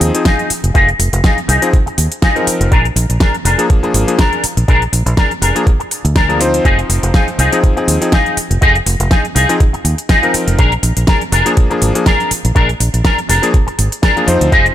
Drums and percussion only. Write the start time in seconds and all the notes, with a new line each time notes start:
0.01 open hi-hat
0.15 closed hi-hat
0.25 kick, snare, closed hi-hat
0.39 closed hi-hat
0.50 open hi-hat
0.64 closed hi-hat
0.75 kick, closed hi-hat
0.89 closed hi-hat
1.00 open hi-hat
1.13 closed hi-hat
1.24 kick, snare, closed hi-hat
1.38 closed hi-hat
1.49 open hi-hat
1.62 closed hi-hat
1.73 kick, closed hi-hat
1.87 closed hi-hat
1.98 open hi-hat
2.12 closed hi-hat
2.22 kick, snare, closed hi-hat
2.36 closed hi-hat
2.47 open hi-hat
2.61 closed hi-hat
2.72 kick, closed hi-hat
2.85 closed hi-hat
2.96 open hi-hat
3.10 closed hi-hat
3.20 kick, snare, closed hi-hat
3.35 closed hi-hat
3.45 open hi-hat
3.59 closed hi-hat
3.70 kick, closed hi-hat
3.83 closed hi-hat
3.94 open hi-hat
4.08 closed hi-hat
4.19 kick, snare, closed hi-hat
4.33 closed hi-hat
4.44 open hi-hat
4.57 closed hi-hat
4.68 kick, closed hi-hat
4.82 closed hi-hat
4.93 open hi-hat
5.07 closed hi-hat
5.17 kick, snare, closed hi-hat
5.31 closed hi-hat
5.42 open hi-hat
5.56 closed hi-hat
5.67 kick, closed hi-hat
5.80 closed hi-hat
5.91 open hi-hat
6.05 closed hi-hat
6.16 kick, snare, closed hi-hat
6.30 closed hi-hat
6.41 open hi-hat
6.54 closed hi-hat
6.65 kick, closed hi-hat
6.79 closed hi-hat
6.90 open hi-hat
7.03 closed hi-hat
7.14 kick, snare, closed hi-hat
7.28 closed hi-hat
7.39 open hi-hat
7.53 closed hi-hat
7.64 kick, closed hi-hat
7.77 closed hi-hat
7.88 open hi-hat
8.02 closed hi-hat
8.12 kick, snare, closed hi-hat
8.26 closed hi-hat
8.37 open hi-hat
8.51 closed hi-hat
8.62 kick, closed hi-hat
8.75 closed hi-hat
8.86 open hi-hat
9.00 closed hi-hat
9.11 kick, snare, closed hi-hat
9.25 closed hi-hat
9.36 open hi-hat
9.49 closed hi-hat
9.60 kick, closed hi-hat
9.74 closed hi-hat
9.85 open hi-hat
9.98 closed hi-hat
10.09 kick, snare, closed hi-hat
10.23 closed hi-hat
10.34 open hi-hat
10.48 closed hi-hat
10.59 kick, closed hi-hat
10.72 closed hi-hat
10.83 open hi-hat
10.97 closed hi-hat
11.07 kick, snare, closed hi-hat
11.21 closed hi-hat
11.32 open hi-hat
11.46 closed hi-hat
11.57 kick, closed hi-hat
11.71 closed hi-hat
11.82 open hi-hat
11.95 closed hi-hat
12.06 kick, snare, closed hi-hat
12.20 closed hi-hat
12.31 open hi-hat
12.45 closed hi-hat
12.56 kick, closed hi-hat
12.69 closed hi-hat
12.80 open hi-hat
12.94 closed hi-hat
13.05 kick, snare, closed hi-hat
13.19 closed hi-hat
13.30 open hi-hat
13.43 closed hi-hat
13.54 kick, closed hi-hat
13.68 closed hi-hat
13.79 open hi-hat
13.92 closed hi-hat
14.03 kick, snare, closed hi-hat
14.17 closed hi-hat
14.28 open hi-hat
14.41 closed hi-hat
14.52 kick, closed hi-hat
14.66 closed hi-hat